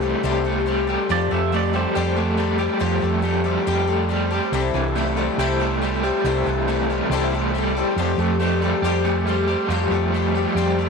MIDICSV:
0, 0, Header, 1, 5, 480
1, 0, Start_track
1, 0, Key_signature, 0, "major"
1, 0, Tempo, 430108
1, 1226, Time_signature, 4, 2, 24, 8
1, 12153, End_track
2, 0, Start_track
2, 0, Title_t, "Pedal steel guitar"
2, 0, Program_c, 0, 26
2, 1247, Note_on_c, 0, 74, 78
2, 1469, Note_off_c, 0, 74, 0
2, 1497, Note_on_c, 0, 76, 80
2, 1714, Note_off_c, 0, 76, 0
2, 1742, Note_on_c, 0, 74, 76
2, 1956, Note_off_c, 0, 74, 0
2, 1962, Note_on_c, 0, 72, 84
2, 2185, Note_off_c, 0, 72, 0
2, 12153, End_track
3, 0, Start_track
3, 0, Title_t, "Twelve-string acoustic guitar"
3, 0, Program_c, 1, 25
3, 10, Note_on_c, 1, 69, 52
3, 24, Note_on_c, 1, 67, 52
3, 34, Note_on_c, 1, 60, 49
3, 41, Note_on_c, 1, 55, 49
3, 258, Note_off_c, 1, 55, 0
3, 258, Note_on_c, 1, 48, 73
3, 259, Note_off_c, 1, 69, 0
3, 261, Note_off_c, 1, 60, 0
3, 266, Note_off_c, 1, 67, 0
3, 266, Note_on_c, 1, 52, 82
3, 271, Note_on_c, 1, 55, 76
3, 275, Note_on_c, 1, 60, 88
3, 279, Note_on_c, 1, 69, 91
3, 282, Note_on_c, 1, 67, 84
3, 480, Note_off_c, 1, 69, 0
3, 488, Note_off_c, 1, 67, 0
3, 493, Note_off_c, 1, 60, 0
3, 493, Note_on_c, 1, 69, 56
3, 501, Note_on_c, 1, 67, 51
3, 503, Note_off_c, 1, 48, 0
3, 507, Note_off_c, 1, 52, 0
3, 507, Note_on_c, 1, 60, 43
3, 509, Note_off_c, 1, 55, 0
3, 522, Note_on_c, 1, 55, 41
3, 722, Note_off_c, 1, 55, 0
3, 732, Note_off_c, 1, 60, 0
3, 735, Note_on_c, 1, 55, 55
3, 740, Note_off_c, 1, 69, 0
3, 741, Note_off_c, 1, 67, 0
3, 745, Note_on_c, 1, 60, 59
3, 755, Note_on_c, 1, 67, 64
3, 766, Note_on_c, 1, 69, 61
3, 960, Note_off_c, 1, 69, 0
3, 973, Note_off_c, 1, 67, 0
3, 973, Note_on_c, 1, 69, 58
3, 981, Note_off_c, 1, 55, 0
3, 983, Note_off_c, 1, 60, 0
3, 987, Note_on_c, 1, 67, 49
3, 996, Note_on_c, 1, 60, 45
3, 1006, Note_on_c, 1, 55, 41
3, 1213, Note_off_c, 1, 55, 0
3, 1218, Note_off_c, 1, 60, 0
3, 1219, Note_off_c, 1, 69, 0
3, 1219, Note_on_c, 1, 53, 72
3, 1226, Note_off_c, 1, 67, 0
3, 1226, Note_on_c, 1, 55, 82
3, 1231, Note_on_c, 1, 60, 75
3, 1237, Note_on_c, 1, 67, 73
3, 1238, Note_on_c, 1, 69, 86
3, 1447, Note_off_c, 1, 69, 0
3, 1459, Note_off_c, 1, 67, 0
3, 1461, Note_on_c, 1, 69, 55
3, 1462, Note_off_c, 1, 53, 0
3, 1466, Note_off_c, 1, 55, 0
3, 1468, Note_off_c, 1, 60, 0
3, 1472, Note_on_c, 1, 67, 52
3, 1494, Note_on_c, 1, 60, 45
3, 1692, Note_off_c, 1, 60, 0
3, 1699, Note_on_c, 1, 55, 58
3, 1702, Note_off_c, 1, 69, 0
3, 1703, Note_off_c, 1, 67, 0
3, 1705, Note_on_c, 1, 60, 62
3, 1717, Note_on_c, 1, 67, 68
3, 1726, Note_on_c, 1, 69, 64
3, 1919, Note_off_c, 1, 69, 0
3, 1933, Note_off_c, 1, 67, 0
3, 1933, Note_on_c, 1, 69, 58
3, 1941, Note_off_c, 1, 55, 0
3, 1944, Note_off_c, 1, 60, 0
3, 1947, Note_on_c, 1, 67, 51
3, 1962, Note_on_c, 1, 60, 44
3, 2178, Note_off_c, 1, 69, 0
3, 2179, Note_on_c, 1, 53, 76
3, 2180, Note_off_c, 1, 60, 0
3, 2182, Note_off_c, 1, 67, 0
3, 2186, Note_on_c, 1, 55, 83
3, 2193, Note_on_c, 1, 60, 78
3, 2195, Note_on_c, 1, 67, 77
3, 2199, Note_on_c, 1, 69, 94
3, 2399, Note_off_c, 1, 69, 0
3, 2412, Note_on_c, 1, 69, 57
3, 2415, Note_off_c, 1, 67, 0
3, 2421, Note_off_c, 1, 53, 0
3, 2424, Note_off_c, 1, 55, 0
3, 2428, Note_off_c, 1, 60, 0
3, 2428, Note_on_c, 1, 67, 51
3, 2441, Note_on_c, 1, 60, 45
3, 2645, Note_off_c, 1, 60, 0
3, 2648, Note_on_c, 1, 55, 58
3, 2655, Note_off_c, 1, 67, 0
3, 2657, Note_off_c, 1, 69, 0
3, 2659, Note_on_c, 1, 60, 60
3, 2668, Note_on_c, 1, 67, 59
3, 2676, Note_on_c, 1, 69, 70
3, 2867, Note_off_c, 1, 69, 0
3, 2881, Note_off_c, 1, 67, 0
3, 2881, Note_on_c, 1, 69, 61
3, 2894, Note_off_c, 1, 60, 0
3, 2895, Note_off_c, 1, 55, 0
3, 2895, Note_on_c, 1, 67, 48
3, 2908, Note_on_c, 1, 60, 48
3, 3115, Note_off_c, 1, 60, 0
3, 3118, Note_on_c, 1, 53, 65
3, 3120, Note_off_c, 1, 67, 0
3, 3126, Note_on_c, 1, 55, 72
3, 3127, Note_off_c, 1, 69, 0
3, 3128, Note_on_c, 1, 60, 73
3, 3133, Note_on_c, 1, 67, 85
3, 3140, Note_on_c, 1, 69, 83
3, 3354, Note_off_c, 1, 69, 0
3, 3368, Note_on_c, 1, 69, 52
3, 3369, Note_off_c, 1, 53, 0
3, 3373, Note_off_c, 1, 55, 0
3, 3373, Note_off_c, 1, 67, 0
3, 3375, Note_off_c, 1, 60, 0
3, 3386, Note_on_c, 1, 67, 43
3, 3394, Note_on_c, 1, 60, 42
3, 3595, Note_off_c, 1, 60, 0
3, 3595, Note_on_c, 1, 55, 64
3, 3609, Note_on_c, 1, 60, 59
3, 3611, Note_off_c, 1, 67, 0
3, 3614, Note_off_c, 1, 69, 0
3, 3625, Note_on_c, 1, 67, 61
3, 3626, Note_on_c, 1, 69, 62
3, 3826, Note_off_c, 1, 69, 0
3, 3839, Note_off_c, 1, 67, 0
3, 3839, Note_on_c, 1, 69, 59
3, 3848, Note_off_c, 1, 55, 0
3, 3852, Note_on_c, 1, 67, 45
3, 3854, Note_off_c, 1, 60, 0
3, 3868, Note_on_c, 1, 60, 43
3, 4087, Note_off_c, 1, 60, 0
3, 4089, Note_off_c, 1, 69, 0
3, 4092, Note_off_c, 1, 67, 0
3, 4092, Note_on_c, 1, 53, 77
3, 4096, Note_on_c, 1, 55, 84
3, 4100, Note_on_c, 1, 60, 79
3, 4106, Note_on_c, 1, 67, 81
3, 4107, Note_on_c, 1, 69, 80
3, 4309, Note_off_c, 1, 69, 0
3, 4323, Note_on_c, 1, 69, 57
3, 4333, Note_off_c, 1, 67, 0
3, 4335, Note_off_c, 1, 53, 0
3, 4338, Note_off_c, 1, 55, 0
3, 4340, Note_off_c, 1, 60, 0
3, 4346, Note_on_c, 1, 67, 50
3, 4355, Note_on_c, 1, 60, 47
3, 4562, Note_off_c, 1, 60, 0
3, 4562, Note_on_c, 1, 55, 56
3, 4571, Note_off_c, 1, 67, 0
3, 4571, Note_off_c, 1, 69, 0
3, 4576, Note_on_c, 1, 60, 58
3, 4584, Note_on_c, 1, 67, 58
3, 4593, Note_on_c, 1, 69, 63
3, 4790, Note_off_c, 1, 69, 0
3, 4804, Note_on_c, 1, 69, 56
3, 4809, Note_off_c, 1, 67, 0
3, 4810, Note_off_c, 1, 55, 0
3, 4817, Note_off_c, 1, 60, 0
3, 4823, Note_on_c, 1, 67, 52
3, 4837, Note_on_c, 1, 60, 46
3, 5051, Note_off_c, 1, 69, 0
3, 5053, Note_on_c, 1, 48, 74
3, 5053, Note_on_c, 1, 52, 70
3, 5054, Note_off_c, 1, 60, 0
3, 5060, Note_off_c, 1, 67, 0
3, 5060, Note_on_c, 1, 55, 77
3, 5065, Note_on_c, 1, 64, 86
3, 5067, Note_on_c, 1, 60, 85
3, 5069, Note_on_c, 1, 69, 80
3, 5274, Note_off_c, 1, 69, 0
3, 5287, Note_off_c, 1, 64, 0
3, 5287, Note_on_c, 1, 69, 50
3, 5294, Note_off_c, 1, 60, 0
3, 5295, Note_off_c, 1, 48, 0
3, 5296, Note_off_c, 1, 52, 0
3, 5299, Note_off_c, 1, 55, 0
3, 5301, Note_on_c, 1, 64, 46
3, 5308, Note_on_c, 1, 60, 48
3, 5317, Note_on_c, 1, 55, 41
3, 5516, Note_off_c, 1, 55, 0
3, 5527, Note_off_c, 1, 60, 0
3, 5529, Note_on_c, 1, 55, 57
3, 5533, Note_off_c, 1, 69, 0
3, 5539, Note_off_c, 1, 64, 0
3, 5540, Note_on_c, 1, 60, 64
3, 5551, Note_on_c, 1, 64, 72
3, 5557, Note_on_c, 1, 69, 68
3, 5752, Note_off_c, 1, 69, 0
3, 5762, Note_off_c, 1, 64, 0
3, 5766, Note_on_c, 1, 69, 59
3, 5770, Note_off_c, 1, 60, 0
3, 5773, Note_off_c, 1, 55, 0
3, 5776, Note_on_c, 1, 64, 54
3, 5783, Note_on_c, 1, 60, 49
3, 5793, Note_on_c, 1, 55, 50
3, 6010, Note_off_c, 1, 55, 0
3, 6011, Note_off_c, 1, 69, 0
3, 6015, Note_off_c, 1, 60, 0
3, 6016, Note_off_c, 1, 64, 0
3, 6016, Note_on_c, 1, 48, 81
3, 6022, Note_on_c, 1, 52, 78
3, 6024, Note_on_c, 1, 55, 79
3, 6029, Note_on_c, 1, 60, 74
3, 6032, Note_on_c, 1, 64, 92
3, 6032, Note_on_c, 1, 69, 94
3, 6234, Note_off_c, 1, 69, 0
3, 6246, Note_off_c, 1, 64, 0
3, 6248, Note_on_c, 1, 69, 55
3, 6257, Note_off_c, 1, 48, 0
3, 6258, Note_off_c, 1, 60, 0
3, 6259, Note_off_c, 1, 52, 0
3, 6259, Note_on_c, 1, 64, 50
3, 6261, Note_off_c, 1, 55, 0
3, 6272, Note_on_c, 1, 60, 47
3, 6277, Note_on_c, 1, 55, 49
3, 6476, Note_off_c, 1, 55, 0
3, 6488, Note_off_c, 1, 60, 0
3, 6490, Note_on_c, 1, 55, 51
3, 6492, Note_off_c, 1, 69, 0
3, 6498, Note_off_c, 1, 64, 0
3, 6501, Note_on_c, 1, 60, 57
3, 6511, Note_on_c, 1, 64, 64
3, 6519, Note_on_c, 1, 69, 61
3, 6723, Note_off_c, 1, 69, 0
3, 6729, Note_off_c, 1, 64, 0
3, 6733, Note_off_c, 1, 55, 0
3, 6737, Note_on_c, 1, 69, 62
3, 6739, Note_off_c, 1, 60, 0
3, 6742, Note_on_c, 1, 64, 52
3, 6754, Note_on_c, 1, 60, 50
3, 6763, Note_on_c, 1, 55, 46
3, 6967, Note_off_c, 1, 55, 0
3, 6972, Note_on_c, 1, 48, 74
3, 6973, Note_off_c, 1, 60, 0
3, 6976, Note_off_c, 1, 64, 0
3, 6977, Note_off_c, 1, 69, 0
3, 6980, Note_on_c, 1, 55, 77
3, 6982, Note_on_c, 1, 52, 73
3, 6987, Note_on_c, 1, 60, 79
3, 6989, Note_on_c, 1, 64, 78
3, 6991, Note_on_c, 1, 69, 77
3, 7198, Note_off_c, 1, 69, 0
3, 7212, Note_on_c, 1, 69, 56
3, 7213, Note_off_c, 1, 64, 0
3, 7215, Note_off_c, 1, 48, 0
3, 7219, Note_off_c, 1, 55, 0
3, 7220, Note_off_c, 1, 52, 0
3, 7222, Note_off_c, 1, 60, 0
3, 7226, Note_on_c, 1, 64, 46
3, 7235, Note_on_c, 1, 60, 47
3, 7241, Note_on_c, 1, 55, 47
3, 7438, Note_off_c, 1, 55, 0
3, 7448, Note_off_c, 1, 60, 0
3, 7452, Note_on_c, 1, 55, 61
3, 7455, Note_off_c, 1, 64, 0
3, 7455, Note_off_c, 1, 69, 0
3, 7461, Note_on_c, 1, 60, 62
3, 7469, Note_on_c, 1, 64, 67
3, 7478, Note_on_c, 1, 69, 63
3, 7685, Note_off_c, 1, 69, 0
3, 7694, Note_off_c, 1, 64, 0
3, 7695, Note_off_c, 1, 55, 0
3, 7698, Note_on_c, 1, 69, 52
3, 7699, Note_off_c, 1, 60, 0
3, 7707, Note_on_c, 1, 64, 49
3, 7716, Note_on_c, 1, 60, 49
3, 7725, Note_on_c, 1, 55, 46
3, 7938, Note_off_c, 1, 55, 0
3, 7938, Note_off_c, 1, 69, 0
3, 7941, Note_off_c, 1, 60, 0
3, 7941, Note_on_c, 1, 48, 77
3, 7942, Note_off_c, 1, 64, 0
3, 7947, Note_on_c, 1, 52, 87
3, 7951, Note_on_c, 1, 55, 81
3, 7955, Note_on_c, 1, 60, 93
3, 7958, Note_on_c, 1, 64, 91
3, 7963, Note_on_c, 1, 69, 96
3, 8179, Note_off_c, 1, 48, 0
3, 8180, Note_off_c, 1, 69, 0
3, 8182, Note_off_c, 1, 52, 0
3, 8184, Note_off_c, 1, 64, 0
3, 8185, Note_off_c, 1, 55, 0
3, 8186, Note_off_c, 1, 60, 0
3, 8194, Note_on_c, 1, 69, 52
3, 8197, Note_on_c, 1, 64, 53
3, 8212, Note_on_c, 1, 60, 49
3, 8218, Note_on_c, 1, 55, 46
3, 8412, Note_off_c, 1, 55, 0
3, 8423, Note_off_c, 1, 60, 0
3, 8425, Note_on_c, 1, 55, 61
3, 8426, Note_off_c, 1, 69, 0
3, 8428, Note_off_c, 1, 64, 0
3, 8436, Note_on_c, 1, 60, 60
3, 8450, Note_on_c, 1, 64, 59
3, 8462, Note_on_c, 1, 69, 65
3, 8654, Note_off_c, 1, 69, 0
3, 8662, Note_off_c, 1, 55, 0
3, 8666, Note_off_c, 1, 64, 0
3, 8667, Note_off_c, 1, 60, 0
3, 8668, Note_on_c, 1, 69, 60
3, 8680, Note_on_c, 1, 64, 52
3, 8687, Note_on_c, 1, 60, 53
3, 8699, Note_on_c, 1, 55, 52
3, 8891, Note_off_c, 1, 55, 0
3, 8900, Note_off_c, 1, 60, 0
3, 8902, Note_on_c, 1, 53, 72
3, 8903, Note_off_c, 1, 69, 0
3, 8905, Note_on_c, 1, 55, 75
3, 8909, Note_off_c, 1, 64, 0
3, 8913, Note_on_c, 1, 60, 75
3, 8918, Note_on_c, 1, 67, 81
3, 8922, Note_on_c, 1, 69, 87
3, 9122, Note_off_c, 1, 69, 0
3, 9135, Note_on_c, 1, 69, 54
3, 9139, Note_off_c, 1, 67, 0
3, 9141, Note_off_c, 1, 53, 0
3, 9142, Note_off_c, 1, 55, 0
3, 9147, Note_off_c, 1, 60, 0
3, 9152, Note_on_c, 1, 67, 47
3, 9165, Note_on_c, 1, 60, 45
3, 9372, Note_off_c, 1, 60, 0
3, 9373, Note_on_c, 1, 55, 65
3, 9378, Note_off_c, 1, 69, 0
3, 9382, Note_off_c, 1, 67, 0
3, 9385, Note_on_c, 1, 60, 65
3, 9395, Note_on_c, 1, 67, 64
3, 9402, Note_on_c, 1, 69, 71
3, 9606, Note_off_c, 1, 69, 0
3, 9617, Note_off_c, 1, 55, 0
3, 9619, Note_on_c, 1, 69, 54
3, 9623, Note_off_c, 1, 60, 0
3, 9625, Note_off_c, 1, 67, 0
3, 9638, Note_on_c, 1, 67, 49
3, 9650, Note_on_c, 1, 60, 47
3, 9861, Note_off_c, 1, 69, 0
3, 9864, Note_off_c, 1, 60, 0
3, 9867, Note_on_c, 1, 53, 79
3, 9870, Note_off_c, 1, 67, 0
3, 9871, Note_on_c, 1, 55, 75
3, 9878, Note_on_c, 1, 60, 94
3, 9882, Note_on_c, 1, 67, 95
3, 9889, Note_on_c, 1, 69, 80
3, 10087, Note_off_c, 1, 69, 0
3, 10100, Note_on_c, 1, 69, 58
3, 10102, Note_off_c, 1, 67, 0
3, 10105, Note_off_c, 1, 53, 0
3, 10107, Note_off_c, 1, 55, 0
3, 10110, Note_off_c, 1, 60, 0
3, 10115, Note_on_c, 1, 67, 57
3, 10133, Note_on_c, 1, 60, 50
3, 10342, Note_off_c, 1, 69, 0
3, 10343, Note_off_c, 1, 60, 0
3, 10344, Note_on_c, 1, 55, 61
3, 10347, Note_off_c, 1, 67, 0
3, 10357, Note_on_c, 1, 60, 59
3, 10360, Note_on_c, 1, 67, 65
3, 10369, Note_on_c, 1, 69, 73
3, 10563, Note_off_c, 1, 69, 0
3, 10576, Note_on_c, 1, 69, 53
3, 10580, Note_off_c, 1, 67, 0
3, 10584, Note_off_c, 1, 55, 0
3, 10591, Note_off_c, 1, 60, 0
3, 10594, Note_on_c, 1, 67, 57
3, 10608, Note_on_c, 1, 60, 52
3, 10821, Note_off_c, 1, 69, 0
3, 10825, Note_off_c, 1, 60, 0
3, 10826, Note_off_c, 1, 67, 0
3, 10827, Note_on_c, 1, 53, 76
3, 10834, Note_on_c, 1, 55, 72
3, 10838, Note_on_c, 1, 60, 78
3, 10839, Note_on_c, 1, 67, 78
3, 10845, Note_on_c, 1, 69, 80
3, 11057, Note_off_c, 1, 69, 0
3, 11067, Note_off_c, 1, 53, 0
3, 11070, Note_on_c, 1, 69, 57
3, 11071, Note_off_c, 1, 55, 0
3, 11073, Note_off_c, 1, 60, 0
3, 11073, Note_off_c, 1, 67, 0
3, 11086, Note_on_c, 1, 67, 54
3, 11099, Note_on_c, 1, 60, 47
3, 11309, Note_off_c, 1, 69, 0
3, 11316, Note_off_c, 1, 60, 0
3, 11317, Note_off_c, 1, 67, 0
3, 11318, Note_on_c, 1, 55, 60
3, 11329, Note_on_c, 1, 60, 61
3, 11339, Note_on_c, 1, 67, 70
3, 11347, Note_on_c, 1, 69, 62
3, 11539, Note_off_c, 1, 69, 0
3, 11552, Note_on_c, 1, 69, 55
3, 11554, Note_off_c, 1, 55, 0
3, 11557, Note_off_c, 1, 67, 0
3, 11560, Note_off_c, 1, 60, 0
3, 11570, Note_on_c, 1, 67, 54
3, 11583, Note_on_c, 1, 60, 46
3, 11791, Note_off_c, 1, 60, 0
3, 11792, Note_off_c, 1, 69, 0
3, 11794, Note_off_c, 1, 67, 0
3, 11796, Note_on_c, 1, 53, 77
3, 11800, Note_on_c, 1, 55, 82
3, 11805, Note_on_c, 1, 60, 87
3, 11808, Note_on_c, 1, 67, 83
3, 11814, Note_on_c, 1, 69, 90
3, 12027, Note_off_c, 1, 69, 0
3, 12035, Note_off_c, 1, 53, 0
3, 12037, Note_off_c, 1, 55, 0
3, 12039, Note_off_c, 1, 60, 0
3, 12040, Note_off_c, 1, 67, 0
3, 12040, Note_on_c, 1, 69, 54
3, 12060, Note_on_c, 1, 67, 51
3, 12074, Note_on_c, 1, 60, 49
3, 12153, Note_off_c, 1, 60, 0
3, 12153, Note_off_c, 1, 67, 0
3, 12153, Note_off_c, 1, 69, 0
3, 12153, End_track
4, 0, Start_track
4, 0, Title_t, "Overdriven electric guitar"
4, 0, Program_c, 2, 29
4, 0, Note_on_c, 2, 48, 65
4, 0, Note_on_c, 2, 52, 59
4, 0, Note_on_c, 2, 57, 59
4, 0, Note_on_c, 2, 67, 64
4, 38, Note_on_c, 2, 55, 59
4, 264, Note_off_c, 2, 67, 0
4, 268, Note_on_c, 2, 67, 64
4, 512, Note_off_c, 2, 48, 0
4, 512, Note_off_c, 2, 57, 0
4, 516, Note_on_c, 2, 57, 61
4, 747, Note_off_c, 2, 52, 0
4, 756, Note_off_c, 2, 55, 0
4, 761, Note_on_c, 2, 55, 66
4, 985, Note_off_c, 2, 67, 0
4, 989, Note_on_c, 2, 67, 62
4, 1237, Note_on_c, 2, 53, 68
4, 1271, Note_off_c, 2, 55, 0
4, 1271, Note_off_c, 2, 67, 0
4, 1462, Note_off_c, 2, 57, 0
4, 1467, Note_on_c, 2, 57, 63
4, 1707, Note_off_c, 2, 57, 0
4, 1711, Note_on_c, 2, 57, 56
4, 1939, Note_on_c, 2, 55, 62
4, 2178, Note_on_c, 2, 67, 65
4, 2417, Note_off_c, 2, 57, 0
4, 2422, Note_on_c, 2, 57, 59
4, 2429, Note_off_c, 2, 53, 0
4, 2649, Note_off_c, 2, 55, 0
4, 2653, Note_on_c, 2, 55, 70
4, 2880, Note_off_c, 2, 67, 0
4, 2893, Note_on_c, 2, 67, 61
4, 3136, Note_on_c, 2, 53, 71
4, 3360, Note_off_c, 2, 57, 0
4, 3373, Note_on_c, 2, 57, 59
4, 3599, Note_off_c, 2, 57, 0
4, 3612, Note_on_c, 2, 57, 59
4, 3842, Note_off_c, 2, 55, 0
4, 3855, Note_on_c, 2, 55, 59
4, 4087, Note_off_c, 2, 67, 0
4, 4100, Note_on_c, 2, 67, 67
4, 4322, Note_off_c, 2, 57, 0
4, 4335, Note_on_c, 2, 57, 57
4, 4336, Note_off_c, 2, 53, 0
4, 4558, Note_off_c, 2, 55, 0
4, 4571, Note_on_c, 2, 55, 64
4, 4802, Note_off_c, 2, 67, 0
4, 4815, Note_on_c, 2, 67, 61
4, 5048, Note_on_c, 2, 48, 65
4, 5055, Note_off_c, 2, 55, 0
4, 5056, Note_off_c, 2, 57, 0
4, 5057, Note_off_c, 2, 67, 0
4, 5293, Note_on_c, 2, 52, 61
4, 5532, Note_on_c, 2, 57, 63
4, 5771, Note_on_c, 2, 55, 57
4, 6015, Note_on_c, 2, 67, 71
4, 6252, Note_off_c, 2, 48, 0
4, 6260, Note_off_c, 2, 57, 0
4, 6264, Note_on_c, 2, 57, 58
4, 6495, Note_off_c, 2, 52, 0
4, 6496, Note_off_c, 2, 55, 0
4, 6501, Note_on_c, 2, 55, 69
4, 6729, Note_off_c, 2, 67, 0
4, 6734, Note_on_c, 2, 67, 64
4, 6983, Note_on_c, 2, 48, 66
4, 7221, Note_on_c, 2, 52, 61
4, 7453, Note_off_c, 2, 57, 0
4, 7458, Note_on_c, 2, 57, 61
4, 7689, Note_off_c, 2, 55, 0
4, 7694, Note_on_c, 2, 55, 60
4, 7927, Note_off_c, 2, 67, 0
4, 7932, Note_on_c, 2, 67, 70
4, 8162, Note_off_c, 2, 57, 0
4, 8167, Note_on_c, 2, 57, 62
4, 8181, Note_off_c, 2, 48, 0
4, 8405, Note_off_c, 2, 55, 0
4, 8409, Note_on_c, 2, 55, 73
4, 8420, Note_off_c, 2, 52, 0
4, 8641, Note_off_c, 2, 67, 0
4, 8645, Note_on_c, 2, 67, 66
4, 8888, Note_on_c, 2, 53, 62
4, 8922, Note_off_c, 2, 55, 0
4, 8922, Note_off_c, 2, 67, 0
4, 9123, Note_off_c, 2, 57, 0
4, 9127, Note_on_c, 2, 57, 65
4, 9363, Note_off_c, 2, 57, 0
4, 9368, Note_on_c, 2, 57, 64
4, 9612, Note_on_c, 2, 55, 58
4, 9847, Note_on_c, 2, 67, 69
4, 10088, Note_off_c, 2, 57, 0
4, 10092, Note_on_c, 2, 57, 60
4, 10097, Note_off_c, 2, 53, 0
4, 10329, Note_off_c, 2, 55, 0
4, 10333, Note_on_c, 2, 55, 66
4, 10570, Note_off_c, 2, 67, 0
4, 10575, Note_on_c, 2, 67, 66
4, 10808, Note_on_c, 2, 53, 68
4, 11055, Note_off_c, 2, 57, 0
4, 11060, Note_on_c, 2, 57, 63
4, 11298, Note_off_c, 2, 57, 0
4, 11302, Note_on_c, 2, 57, 62
4, 11539, Note_off_c, 2, 55, 0
4, 11543, Note_on_c, 2, 55, 59
4, 11782, Note_off_c, 2, 67, 0
4, 11786, Note_on_c, 2, 67, 68
4, 12023, Note_off_c, 2, 53, 0
4, 12030, Note_off_c, 2, 57, 0
4, 12034, Note_on_c, 2, 57, 59
4, 12153, Note_off_c, 2, 55, 0
4, 12153, Note_off_c, 2, 57, 0
4, 12153, Note_off_c, 2, 67, 0
4, 12153, End_track
5, 0, Start_track
5, 0, Title_t, "Fingered electric bass"
5, 0, Program_c, 3, 33
5, 0, Note_on_c, 3, 36, 80
5, 139, Note_off_c, 3, 36, 0
5, 264, Note_on_c, 3, 36, 98
5, 1058, Note_off_c, 3, 36, 0
5, 1226, Note_on_c, 3, 41, 96
5, 1424, Note_off_c, 3, 41, 0
5, 1468, Note_on_c, 3, 41, 82
5, 2061, Note_off_c, 3, 41, 0
5, 2188, Note_on_c, 3, 41, 93
5, 2978, Note_off_c, 3, 41, 0
5, 3134, Note_on_c, 3, 41, 93
5, 3335, Note_off_c, 3, 41, 0
5, 3377, Note_on_c, 3, 41, 79
5, 3973, Note_off_c, 3, 41, 0
5, 4096, Note_on_c, 3, 41, 100
5, 4891, Note_off_c, 3, 41, 0
5, 5044, Note_on_c, 3, 36, 89
5, 5248, Note_off_c, 3, 36, 0
5, 5288, Note_on_c, 3, 36, 82
5, 5887, Note_off_c, 3, 36, 0
5, 6001, Note_on_c, 3, 36, 97
5, 6802, Note_off_c, 3, 36, 0
5, 6965, Note_on_c, 3, 36, 92
5, 7169, Note_off_c, 3, 36, 0
5, 7209, Note_on_c, 3, 36, 80
5, 7808, Note_off_c, 3, 36, 0
5, 7919, Note_on_c, 3, 36, 107
5, 8722, Note_off_c, 3, 36, 0
5, 8887, Note_on_c, 3, 41, 89
5, 9091, Note_off_c, 3, 41, 0
5, 9128, Note_on_c, 3, 41, 89
5, 9730, Note_off_c, 3, 41, 0
5, 9845, Note_on_c, 3, 41, 104
5, 10649, Note_off_c, 3, 41, 0
5, 10807, Note_on_c, 3, 41, 95
5, 11014, Note_off_c, 3, 41, 0
5, 11050, Note_on_c, 3, 41, 88
5, 11656, Note_off_c, 3, 41, 0
5, 11772, Note_on_c, 3, 41, 96
5, 12153, Note_off_c, 3, 41, 0
5, 12153, End_track
0, 0, End_of_file